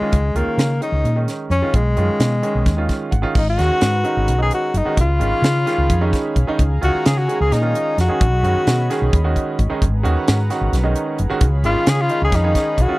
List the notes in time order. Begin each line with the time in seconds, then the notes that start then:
Already playing: G#3
0.01 D#3 G#3 C#4 F4, muted fretless electric bass stroke
0.12 C#2, kick, closed hi-hat
0.34 C#2 D#3 G#3 A#3 C#4 F4, closed hi-hat
0.57 C#3, snare, closed hi-hat
0.81 D#3 G#3 C#4 D#4, closed hi-hat
0.92 C#2
1.04 A#2, closed hi-hat
1.16 D#3 G#3 C#4 D#4
1.28 snare, closed hi-hat
1.50 F2 C#4, closed hi-hat
1.62 D#3 G#3 C#4 F4, muted fretless electric bass stroke
1.74 B1 G#3, kick, closed hi-hat
1.97 F#2 D#3 G#3 C#4 F4, closed hi-hat
2.09 muted fretless electric bass stroke
2.20 B2, snare, closed hi-hat
2.42 D#3 G#3 C#4 G#4, closed hi-hat
2.55 B1
2.66 D#2, kick, snare, closed hi-hat
2.77 D#3 G#3 C#4 F4
2.89 F5, kick, snare, closed hi-hat
3.11 G#1 F#5, kick, closed hi-hat
3.22 D#3 G#3 C#4 F4, muted fretless electric bass stroke
3.35 G#1 D#4 G#4 B4 F#5 A#5, kick, crash
3.49 F#4
3.58 D#2 D#3 G#3 C#4 F#4, snare, closed hi-hat
3.71 muted fretless electric bass stroke
3.81 G#2, snare, closed hi-hat
4.04 D#3 G#3 C#4 D#4, closed hi-hat
4.17 G#1
4.28 B1, closed hi-hat
4.38 D#3 G#3 C#4 D#4
4.42 G#4
4.51 F#4, closed hi-hat
4.74 F#1 D#4, closed hi-hat
4.85 D#3 G#3 C#4 F#4, muted fretless electric bass stroke
4.97 C#2 F4 C#5 F5 B5, kick, closed hi-hat
5.19 G#1 D#3 G#3 C#4 F4, closed hi-hat
5.32 muted fretless electric bass stroke
5.42 C#3, snare, closed hi-hat
5.66 D#3 G#3 C#4 F4, snare, closed hi-hat
5.78 C#2
5.90 F2, kick, closed hi-hat
6.01 D#3 G#3 C#4 D#4
6.13 kick, snare, closed hi-hat
6.36 B1, kick, closed hi-hat
6.47 D#3 G#3 C#4 D#4, muted fretless electric bass stroke
6.58 C#2 G#5 A#5, kick, closed hi-hat
6.81 C#2 D#3 G#3 C#4 F4 F#4, closed hi-hat
7.06 C#3 G#4, snare, closed hi-hat
7.18 F#4
7.28 D#3 G#3 C#4 G#4, closed hi-hat
7.40 C#2 G#4
7.52 A#2 D#4, snare, closed hi-hat
7.61 D#3 G#3 C#4 F4
7.75 closed hi-hat
7.97 F2 F#4, snare, closed hi-hat
8.08 D#3 G#3 C#4 G#4, muted fretless electric bass stroke
8.20 B1 C#5 D#5 B5, kick, closed hi-hat
8.43 F#2 D#3 G#3 C#4 F#4, closed hi-hat
8.55 muted fretless electric bass stroke
8.67 B2, snare, closed hi-hat
8.90 D#3 G#3 C#4 G#4, snare, closed hi-hat
9.01 B1
9.13 D#2, kick, closed hi-hat
9.24 D#3 G#3 C#4 F#4
9.36 kick, closed hi-hat
9.59 G#1, kick, closed hi-hat
9.70 D#3 G#3 C#4 D#4
9.82 G#1 G#4 B4 F#5 A#5, kick, closed hi-hat
10.03 D#2 D#3 G#3 C#4 F#4, closed hi-hat
10.16 muted fretless electric bass stroke
10.28 G#2, snare, closed hi-hat
10.50 D#3 G#3 C#4 F#4, snare, closed hi-hat
10.61 G#1
10.72 B1, snare, closed hi-hat
10.83 D#3 G#3 C#4 D#4
10.96 closed hi-hat
11.19 F#1, closed hi-hat
11.30 D#3 G#3 C#4 F#4, muted fretless electric bass stroke
11.40 C#2 C#5 F5 B5, kick, closed hi-hat
11.63 G#1 D#3 G#3 C#4 F4, closed hi-hat
11.76 muted fretless electric bass stroke
11.87 C#3 G#4, snare, closed hi-hat
12.01 F4
12.09 D#3 G#3 C#4 D#4, closed hi-hat
12.21 C#2 G#4
12.32 F2 D#4, kick, snare, closed hi-hat
12.44 D#3 G#3 C#4 G#4
12.55 kick, snare, closed hi-hat
12.78 B1 F#4, kick, closed hi-hat
12.88 D#3 G#3 C#4 F4